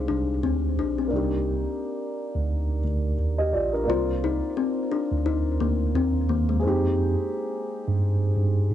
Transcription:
Already playing: G#3 C4 G4 D5
0.08 C2 D4
0.43 D2 C4
0.78 A#1 D4
0.98 C4
1.08 A#3 D4
1.12 C2 D#4 G4
2.36 D2
2.85 D2
3.18 D#2
3.38 G4 D#5
3.53 A#1 F4 D5
3.73 D4 A#4
3.84 A#3 D5
3.88 C2 C4 F4
4.24 D#4
4.57 C4
4.92 D4
5.11 D2
5.26 D#4
5.60 D2 A#3
5.95 D#2 C4
6.29 D#2 A#3
6.49 G#3
6.60 C4 G#4
6.64 F2 D#4 G4
7.88 G2
8.37 G2
8.71 G#2

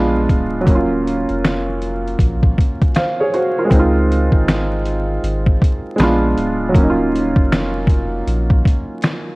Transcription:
Already playing: A#1 G#3 B3 D4 F4
0.29 D1, kick, closed hi-hat
0.61 F#3
0.66 D#1 A#3, kick, closed hi-hat
0.71 C#4
0.75 F4
1.08 closed hi-hat
1.29 F1, closed hi-hat
1.45 finger snap, snare, closed hi-hat
1.82 closed hi-hat
2.08 closed hi-hat
2.19 A#1, kick, closed hi-hat
2.43 kick
2.58 kick, closed hi-hat
2.81 kick, closed hi-hat
2.94 C5 F5, finger snap, snare, closed hi-hat
3.20 G#4 C#5
3.34 F#4 C5, closed hi-hat
3.58 F4 A#4
3.65 G#3
3.70 C#2 C4, kick, closed hi-hat
3.74 D#4
3.79 F4
4.12 closed hi-hat
4.32 G#1, kick
4.48 finger snap, snare, closed hi-hat
4.86 closed hi-hat
5.23 G#1, closed hi-hat
5.46 kick
5.62 kick, closed hi-hat
5.96 A#1 G#3 B3, finger snap, closed hi-hat
6.00 D4 F4, snare
6.37 D1, closed hi-hat
6.69 F#3
6.74 D#1 A#3, kick, closed hi-hat
6.78 C#4
6.83 D#4
6.90 F4
7.15 closed hi-hat
7.36 F1, kick
7.52 finger snap, snare, closed hi-hat
7.87 kick, closed hi-hat
8.27 A#1, closed hi-hat
8.50 kick
8.66 kick, closed hi-hat
9.02 finger snap, snare, closed hi-hat

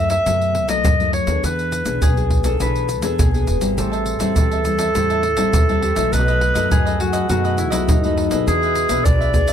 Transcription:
Already playing: F#2 F#3 A3 D#4 G#4 B4 E5
0.10 E5, pandeiro, shaker
0.26 F#2 B2 F#3 A3, pandeiro, shaker, surdo
0.42 pandeiro, shaker
0.55 pandeiro
0.68 B1 F#3 A3 D#4 D#5, pandeiro, shaker
0.84 F#2, pandeiro, shaker, surdo
1.00 F#3 A3 D#4, pandeiro, shaker
1.13 C#5, pandeiro
1.27 D#2 B3 D4 G#4, pandeiro, shaker
1.44 E2 E3 B4, pandeiro, shaker, surdo
1.59 pandeiro, shaker
1.72 pandeiro, shaker
1.85 B1 B3 D4 G#4, pandeiro, shaker
2.02 B1 B2 G#4, pandeiro, shaker, surdo
2.17 B3 D4 G#4, pandeiro, shaker
2.30 pandeiro, surdo
2.44 B3 D4 G#4 A4, pandeiro, shaker
2.60 B1 E3 B3 D4 G#4 B4, pandeiro, shaker, surdo
2.75 pandeiro, shaker
2.89 pandeiro, shaker
3.02 E2 B3 D4 G#4 A4, pandeiro, shaker
3.19 B1 B2 G#4, pandeiro, shaker, surdo
3.34 B3 D4 G#4, pandeiro, shaker
3.47 E1, pandeiro, shaker
3.61 G#1 G3 C4 E4, pandeiro, shaker
3.77 A1 A2 G4 A4 C5 E5 A5, pandeiro, shaker, surdo
3.92 C5 E5 A5, pandeiro, shaker
4.06 pandeiro, shaker
4.19 E2 G3 C4 E4 C5 E5 A5, pandeiro, shaker
4.35 E2 E3 G4 C5 E5 A5, pandeiro, shaker, surdo
4.51 C5 E5 A5, pandeiro, shaker
4.65 G3 C4 E4, muted cavaquinho stroke, pandeiro, shaker
4.78 C5 E5 A5, pandeiro, shaker
4.95 E2 A2 G3 C4 E4 G4 C5 E5 A5, pandeiro, shaker, surdo
5.10 C5 E5 A5, pandeiro, shaker
5.23 muted cavaquinho stroke, pandeiro
5.37 A1 G3 C4 E4 C5 E5 A5, pandeiro, shaker
5.53 E2 E3, pandeiro, shaker, surdo
5.69 G3 C4 E4 C5 E5 A5, pandeiro, shaker
5.82 G4 C5 E5 A5, pandeiro
5.96 A#1 F#3 A3 D#4 C5 E5 A5, pandeiro, shaker
6.13 B1 B2 D#4 A4 B4 D#5, pandeiro, shaker, surdo
6.28 A4 B4 D#5, pandeiro, shaker
6.41 pandeiro
6.54 F#2 F#3 A3 D#4 A4 B4 D#5, pandeiro, shaker
6.70 F#2 D#4 G#4 A4 B4 D#5, pandeiro, shaker, surdo
6.85 A4 B4 D#5, pandeiro, shaker
6.99 F#3 A3 D#4 F#4, muted cavaquinho stroke, pandeiro
7.13 A4 B4 D#5, pandeiro, shaker
7.29 F#2 B2 F#3 A3 D#4 F#4 A4 B4 D#5, pandeiro, shaker, surdo
7.44 A4 B4 D#5, pandeiro, shaker
7.57 E4, muted cavaquinho stroke, pandeiro, shaker
7.70 B1 F#3 A3 D#4 A4 B4 D#5, pandeiro, shaker
7.89 F#2 D#4, pandeiro, shaker, surdo
8.03 F#3 A3 D#4 A4 B4 D#5, pandeiro, shaker
8.16 D#4 A4 B4 D#5, pandeiro
8.31 B1 B3 D4 G#4 A4 B4 D#5, pandeiro, shaker
8.47 E2 E3 D4 G#4 B4 E5, pandeiro, shaker, surdo
8.62 G#4 B4 E5, pandeiro, shaker
8.75 pandeiro, shaker
8.89 B1 B3 D4 G#4 B4 E5, pandeiro, shaker
9.05 B1 B2 D4 G#4 B4 D5 E5, pandeiro, shaker, surdo
9.20 G#4 B4 E5, pandeiro, shaker
9.34 B3 D4 G#4, muted cavaquinho stroke, pandeiro, shaker, surdo
9.48 G#4 B4 E5, pandeiro, shaker

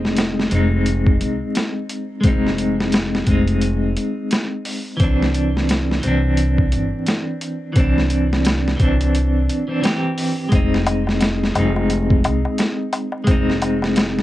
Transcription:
Already playing: F1 G#3 C4 D#4
0.05 snare
0.17 snare, closed hi-hat
0.40 snare
0.48 F1 G#3 C4, closed hi-hat
0.55 D#4
0.86 closed hi-hat
1.07 kick
1.20 C2, closed hi-hat
1.55 snare, closed hi-hat
1.89 closed hi-hat
2.21 F1 G#3 C4, kick, closed hi-hat
2.27 D#4
2.47 snare
2.58 closed hi-hat
2.80 snare
2.92 snare, closed hi-hat
3.15 snare
3.24 F1 G#3 C4, kick, closed hi-hat
3.30 D#4
3.47 closed hi-hat
3.61 closed hi-hat
3.97 closed hi-hat
4.31 snare, closed hi-hat
4.65 open hi-hat
4.97 C2 E3 C4, kick, closed hi-hat
5.04 D4
5.22 snare
5.34 closed hi-hat
5.57 snare
5.69 snare, closed hi-hat
5.91 snare
6.00 C2 E3 C4, closed hi-hat
6.07 D4
6.37 closed hi-hat
6.58 kick
6.72 G1, closed hi-hat
7.06 snare, closed hi-hat
7.41 closed hi-hat
7.73 C2 E3 C4, kick, closed hi-hat
7.80 D4
7.98 snare
8.10 closed hi-hat
8.33 snare
8.45 snare, closed hi-hat
8.68 snare
8.76 C2 E3 C4, kick, closed hi-hat
8.83 D4
9.01 closed hi-hat
9.15 closed hi-hat
9.49 closed hi-hat
9.68 E3 C4 D4
9.81 E3 C4 G4, snare, closed hi-hat
10.18 open hi-hat
10.49 F1 G#3 C4, kick, closed hi-hat, darbuka tek
10.55 D#4
10.74 snare
10.86 closed hi-hat, darbuka tek
11.07 snare, darbuka tek
11.20 snare, closed hi-hat, darbuka tek
11.43 snare
11.52 F1 G#3 C4, closed hi-hat, darbuka tek
11.59 D#4
11.76 darbuka tek
11.90 closed hi-hat, darbuka tek
12.10 kick
12.24 C2, closed hi-hat, darbuka tek
12.45 darbuka tek
12.58 snare, closed hi-hat, darbuka tek
12.93 closed hi-hat, darbuka tek
13.12 darbuka tek
13.24 F1 G#3 C4, kick, closed hi-hat, darbuka tek
13.31 D#4
13.50 snare
13.62 closed hi-hat, darbuka tek
13.82 snare, darbuka tek
13.96 snare, closed hi-hat, darbuka tek
14.18 snare

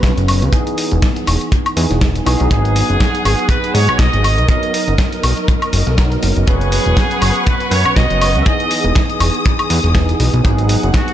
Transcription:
Already playing: F#3 B3 C#4 B4
0.03 B1, kick, snare, closed hi-hat
0.17 F#1, closed hi-hat
0.28 open hi-hat, high woodblock
0.42 C#2, closed hi-hat
0.51 E3 B3 D#4 G#4, kick, closed hi-hat
0.67 closed hi-hat
0.78 open hi-hat
0.92 E1, closed hi-hat
1.02 kick, snare, closed hi-hat
1.16 closed hi-hat
1.27 E1, open hi-hat, high woodblock
1.41 closed hi-hat
1.52 kick, closed hi-hat
1.66 closed hi-hat, high woodblock
1.76 E2 E3 B3 D#4 G#4, open hi-hat
1.91 E1, snare, closed hi-hat
2.01 kick, snare, closed hi-hat
2.15 closed hi-hat
2.26 B1 E3 B3 D#4 G#4, open hi-hat, high woodblock
2.40 B1, closed hi-hat
2.50 F#3 B3 D#4 G#4 F#5, kick, closed hi-hat
2.65 closed hi-hat
2.76 open hi-hat
2.90 F#1, closed hi-hat
3.00 kick, snare, closed hi-hat
3.15 closed hi-hat
3.25 G#1, open hi-hat, high woodblock
3.39 closed hi-hat
3.49 B4, kick, closed hi-hat
3.64 closed hi-hat
3.74 G#2 F#3 B3 D#4 G#4 C#5, open hi-hat
3.89 B1, closed hi-hat, high woodblock
3.98 B1 D#5, kick, snare, closed hi-hat
4.13 G#1, closed hi-hat
4.24 A#4 D#5, open hi-hat, high woodblock
4.38 B1, closed hi-hat
4.48 F#3 B3 D#4 A#4 D#5, kick, closed hi-hat
4.63 closed hi-hat
4.74 open hi-hat
4.88 F#1, closed hi-hat
4.98 kick, snare, closed hi-hat
5.12 closed hi-hat
5.23 B1, open hi-hat, high woodblock
5.37 closed hi-hat
5.48 kick, closed hi-hat
5.62 closed hi-hat, high woodblock
5.73 F#1, open hi-hat
5.87 B1, snare, closed hi-hat
5.97 F#3 B3 D#4 A#4, kick, snare, closed hi-hat
6.12 closed hi-hat
6.23 F#1, open hi-hat
6.36 F#1, closed hi-hat
6.47 F#1 F#3 B3 C#4 G#4 B4 F#5 C#6, kick, closed hi-hat
6.61 closed hi-hat
6.72 open hi-hat
6.86 E1, closed hi-hat
6.97 kick, snare, closed hi-hat
7.11 closed hi-hat
7.22 F#1, open hi-hat, high woodblock
7.36 closed hi-hat
7.47 B4, kick, closed hi-hat
7.60 closed hi-hat
7.70 F#2 F#3 B3 C#4 B4 C#5, open hi-hat
7.85 B1, closed hi-hat, high woodblock
7.96 B1 D#5, kick, snare, closed hi-hat
8.10 F#1, closed hi-hat
8.21 open hi-hat, high woodblock
8.35 C#2, closed hi-hat
8.40 E5
8.45 E3 B3 D#4 G#4 D#5 D#6, kick, closed hi-hat
8.60 closed hi-hat
8.71 open hi-hat
8.84 E1, closed hi-hat
8.95 kick, snare, closed hi-hat
9.10 closed hi-hat
9.20 E1, open hi-hat, high woodblock
9.34 closed hi-hat
9.45 kick, closed hi-hat
9.59 closed hi-hat, high woodblock
9.70 E2, open hi-hat
9.84 E1, snare, closed hi-hat
9.94 E3 B3 D#4 G#4, kick, snare, closed hi-hat
10.09 closed hi-hat
10.20 B1, open hi-hat
10.34 B1, closed hi-hat
10.43 G#1 F#3 B3 D#4 G#4 F#5, kick, closed hi-hat
10.58 closed hi-hat
10.69 open hi-hat
10.83 F#1, closed hi-hat
10.94 F#4, kick, snare, closed hi-hat
11.08 closed hi-hat

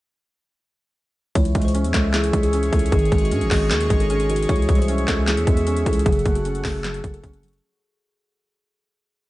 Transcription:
1.35 C#2 E3 G#4 C#5 E5 C#6, kick, closed hi-hat
1.45 closed hi-hat
1.55 C#2 G#3, kick, closed hi-hat
1.62 C5, closed hi-hat
1.68 closed hi-hat
1.74 C#4, closed hi-hat
1.84 E2, closed hi-hat
1.94 C#2 G#3 A4, kick, snare, clap, closed hi-hat
2.14 E3 G#4, snare, clap, closed hi-hat
2.24 closed hi-hat
2.33 C#2 G#3, kick, closed hi-hat
2.43 G#4, closed hi-hat
2.53 C#4, closed hi-hat
2.63 closed hi-hat
2.73 C#2 E3 A4, kick, closed hi-hat
2.79 closed hi-hat
2.86 closed hi-hat
2.92 G#1 D#3 G#4 D#5, kick, closed hi-hat
2.99 closed hi-hat
3.05 closed hi-hat
3.12 G#1 G#3, kick, closed hi-hat
3.18 F#4, closed hi-hat
3.25 closed hi-hat
3.31 G#2 C#4, closed hi-hat
3.41 G#1, closed hi-hat
3.51 G#1 G#3 G#4, kick, snare, clap, open hi-hat
3.71 D#2 D#3 G#4, snare, clap, closed hi-hat
3.81 closed hi-hat
3.90 G#1 G#3, kick, closed hi-hat
4.00 A4, closed hi-hat
4.10 C#4 G#4, closed hi-hat
4.20 closed hi-hat
4.30 D#3 F#4, closed hi-hat
4.36 closed hi-hat
4.43 closed hi-hat
4.49 C#2 E3 C#5 E5, kick, closed hi-hat
4.56 closed hi-hat
4.62 closed hi-hat
4.68 C2 G#3, kick, closed hi-hat
4.75 C5, closed hi-hat
4.82 closed hi-hat
4.88 C#4, closed hi-hat
4.98 closed hi-hat
5.08 C#2 G#3 A4, kick, snare, clap, closed hi-hat
5.28 E3 G#4, snare, clap, closed hi-hat
5.37 E2, closed hi-hat
5.47 E2 G#3, kick, closed hi-hat
5.57 G#4, closed hi-hat
5.67 C#4, closed hi-hat
5.77 closed hi-hat
5.86 C#2 E3 A4, kick, closed hi-hat
5.93 closed hi-hat
5.99 closed hi-hat
6.06 F#1 F#3 G#4 A4 F#5, kick, closed hi-hat
6.12 closed hi-hat
6.19 closed hi-hat
6.26 F#1 A3, kick, closed hi-hat
6.35 F#4, closed hi-hat
6.45 C#4, closed hi-hat
6.55 closed hi-hat
6.64 F#1 A3 G#4, kick, snare, clap, open hi-hat
6.84 F#3 G#4, snare, clap, closed hi-hat
6.94 closed hi-hat
7.04 F#1 A3, kick, closed hi-hat
7.14 A4, closed hi-hat
7.24 F#1 C#4, kick, closed hi-hat
7.33 closed hi-hat
7.43 F#3, closed hi-hat
7.48 closed hi-hat
7.53 closed hi-hat
7.58 closed hi-hat

